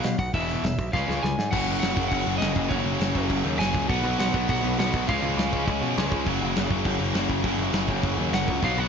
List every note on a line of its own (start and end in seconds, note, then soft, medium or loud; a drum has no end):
0.00 0.19 F5 medium
0.00 open hi-hat medium
0.04 0.15 B2 medium
0.04 0.18 B2 medium
0.04 0.18 F#3 medium
0.04 snare loud
0.19 0.29 B1 medium
0.19 0.33 F#5 loud
0.19 kick medium
0.19 open hi-hat medium
0.34 0.55 E1 medium
0.34 0.63 E2 medium
0.34 0.63 B2 loud
0.34 0.64 E3 medium
0.34 0.93 E5 medium
0.34 kick medium
0.34 open hi-hat medium
0.49 open hi-hat medium
0.63 0.74 E1 medium
0.63 0.77 E2 medium
0.63 0.77 B2 medium
0.63 snare loud
0.63 open hi-hat medium
0.78 0.89 B1 medium
0.78 kick medium
0.78 open hi-hat medium
0.93 1.04 C#2 medium
0.93 1.21 C#3 medium
0.93 1.22 G#3 medium
0.93 1.23 C#4 medium
0.93 1.35 F5 medium
0.93 kick medium
0.93 snare medium
1.08 1.19 C#2 medium
1.08 snare medium
1.22 1.34 C#2 medium
1.22 1.36 C#3 medium
1.22 1.36 G#3 medium
1.22 1.53 G#5 loud
1.22 snare medium
1.38 1.49 G#2 medium
1.38 snare medium
1.51 1.66 F#1 loud
1.51 2.25 F#2 loud
1.51 2.26 C#3 medium
1.51 2.27 F#3 loud
1.51 2.26 A#3 loud
1.51 2.25 C#4 loud
1.51 1.78 F#5 loud
1.51 kick loud
1.51 crash loud
1.51 crash medium
1.67 1.81 F#1 medium
1.67 crash medium
1.79 1.95 F#1 medium
1.79 2.07 F#5 loud
1.79 snare loud
1.79 crash medium
1.96 2.10 F#1 medium
1.96 2.39 F#2 medium
1.96 2.40 C#3 medium
1.96 2.42 F#3 medium
1.96 kick medium
1.96 crash medium
2.08 2.25 F#1 medium
2.08 2.37 F#5 loud
2.08 kick loud
2.08 crash loud
2.26 2.40 F#1 medium
2.26 2.39 F#2 medium
2.26 2.40 C#3 medium
2.26 2.41 F#3 medium
2.26 2.41 A#3 medium
2.26 2.40 C#4 medium
2.26 crash medium
2.38 2.54 F#1 loud
2.38 2.69 F#2 medium
2.38 2.70 C#3 medium
2.38 2.72 F#3 medium
2.38 2.70 D#5 loud
2.38 crash medium
2.42 2.71 A#3 medium
2.42 2.71 C#4 loud
2.42 snare loud
2.56 2.69 F#1 medium
2.56 kick medium
2.56 crash medium
2.69 2.84 F#1 loud
2.69 3.44 F#2 medium
2.69 3.44 C#3 loud
2.69 3.44 F#3 loud
2.69 3.44 A#3 loud
2.69 3.43 C#4 loud
2.69 3.25 C#5 medium
2.69 kick loud
2.69 crash medium
2.84 2.98 F#1 loud
2.84 crash medium
3.00 3.13 F#1 medium
3.00 snare loud
3.00 crash medium
3.15 3.29 F#1 medium
3.15 3.57 F#2 medium
3.15 3.59 C#3 medium
3.15 3.59 F#3 medium
3.15 kick medium
3.15 crash medium
3.30 3.43 F#1 loud
3.30 kick loud
3.30 crash medium
3.44 3.58 D#2 medium
3.44 3.58 F#2 medium
3.44 3.58 C#3 medium
3.44 3.59 F#3 medium
3.44 3.59 A#3 medium
3.44 3.58 C#4 medium
3.44 crash medium
3.59 3.73 F#1 loud
3.59 3.88 F#2 medium
3.59 3.89 C#3 medium
3.59 3.89 F#3 medium
3.59 3.89 A#3 medium
3.59 3.89 C#4 medium
3.59 3.89 G#5 loud
3.59 snare loud
3.59 crash loud
3.74 3.89 C#2 medium
3.74 kick medium
3.74 crash medium
3.89 4.03 B1 loud
3.89 4.62 B2 medium
3.89 4.63 F#3 loud
3.89 4.63 B3 loud
3.89 4.62 D#4 loud
3.89 4.18 F#5 loud
3.89 kick loud
3.89 crash medium
4.04 4.17 B1 loud
4.04 crash medium
4.19 4.32 B1 loud
4.19 4.47 F#5 loud
4.19 snare loud
4.19 crash medium
4.33 4.47 B1 medium
4.33 4.77 B2 medium
4.33 4.78 F#3 medium
4.33 4.77 B3 medium
4.33 kick medium
4.33 crash medium
4.49 4.62 B1 loud
4.49 4.78 F#5 loud
4.49 kick loud
4.49 crash medium
4.63 4.77 B1 medium
4.63 4.76 B2 medium
4.63 4.77 F#3 medium
4.63 4.78 B3 medium
4.63 4.77 D#4 medium
4.63 crash medium
4.77 4.92 B1 loud
4.77 5.07 B2 medium
4.77 5.07 F#3 medium
4.77 5.07 B3 medium
4.77 5.08 D#4 medium
4.77 5.08 F#5 loud
4.77 snare loud
4.77 crash loud
4.94 5.07 B1 medium
4.94 kick loud
4.94 crash medium
5.07 5.22 C#2 loud
5.07 5.81 C#3 loud
5.07 5.81 F3 loud
5.07 5.81 G#3 loud
5.07 5.81 C#4 loud
5.07 5.64 F5 medium
5.07 kick loud
5.07 crash medium
5.22 5.36 C#2 medium
5.22 crash medium
5.37 5.50 C#2 loud
5.37 snare loud
5.37 crash medium
5.53 5.66 C#2 medium
5.53 5.96 C#3 medium
5.53 5.97 G#3 medium
5.53 5.98 C#4 medium
5.53 kick medium
5.53 crash medium
5.67 5.81 C#2 loud
5.67 kick loud
5.67 crash medium
5.81 5.95 B2 medium
5.81 5.95 C#3 medium
5.81 5.96 F3 medium
5.81 5.96 G#3 medium
5.81 5.98 C#4 medium
5.81 crash medium
5.96 6.10 C#2 loud
5.96 6.25 C#3 medium
5.96 6.26 F3 medium
5.96 6.26 G#3 medium
5.96 6.28 C#4 medium
5.96 snare loud
5.96 crash medium
6.11 6.25 C#2 loud
6.11 kick medium
6.11 crash medium
6.26 6.40 F#1 loud
6.26 6.99 F#2 medium
6.26 7.00 C#3 medium
6.26 7.00 F#3 loud
6.26 6.99 A#3 loud
6.26 6.98 C#4 loud
6.26 kick medium
6.26 crash medium
6.41 6.55 F#1 loud
6.41 crash medium
6.56 6.70 F#1 medium
6.56 snare loud
6.56 crash medium
6.70 6.84 F#1 medium
6.70 7.14 F#2 medium
6.70 7.15 C#3 medium
6.70 7.17 F#3 medium
6.70 kick medium
6.70 crash medium
6.85 6.99 F#1 loud
6.85 kick loud
6.85 crash medium
6.99 7.13 F#1 medium
6.99 7.13 F#2 medium
6.99 7.14 C#3 medium
6.99 7.15 F#3 medium
6.99 7.14 A#3 medium
6.99 7.14 C#4 medium
6.99 crash medium
7.14 7.27 F#1 medium
7.14 7.42 F#2 medium
7.14 7.43 C#3 medium
7.14 7.44 F#3 medium
7.14 7.44 A#3 loud
7.14 7.44 C#4 medium
7.14 snare loud
7.14 crash medium
7.30 7.43 F#1 loud
7.30 kick medium
7.30 crash medium
7.43 7.57 F#1 loud
7.43 8.17 F#2 loud
7.43 8.17 C#3 loud
7.43 8.18 F#3 loud
7.43 8.17 A#3 loud
7.43 8.16 C#4 loud
7.43 kick loud
7.43 crash medium
7.58 7.72 F#1 loud
7.58 crash medium
7.72 7.86 F#1 medium
7.72 snare loud
7.72 crash medium
7.88 8.02 F#1 medium
7.88 8.31 F#2 medium
7.88 8.32 C#3 medium
7.88 8.32 F#3 medium
7.88 kick medium
7.88 crash medium
8.03 8.17 F#1 loud
8.03 kick loud
8.03 crash medium
8.17 8.31 D#2 medium
8.17 8.31 F#2 medium
8.17 8.32 C#3 medium
8.17 8.33 F#3 medium
8.17 8.32 A#3 medium
8.17 8.32 C#4 medium
8.17 crash medium
8.33 8.46 F#1 loud
8.33 8.62 F#2 medium
8.33 8.61 C#3 medium
8.33 8.61 F#3 medium
8.33 8.62 A#3 loud
8.33 8.63 C#4 medium
8.33 8.64 F#5 medium
8.33 snare loud
8.33 crash medium
8.48 8.61 C#2 loud
8.48 kick medium
8.48 crash medium
8.62 8.76 B1 loud
8.62 8.88 B2 loud
8.62 8.88 F#3 loud
8.62 8.88 B3 loud
8.62 8.88 D#4 loud
8.62 8.79 F5 medium
8.62 kick medium
8.62 crash medium
8.78 8.88 B1 loud
8.78 8.88 F#5 loud
8.78 crash medium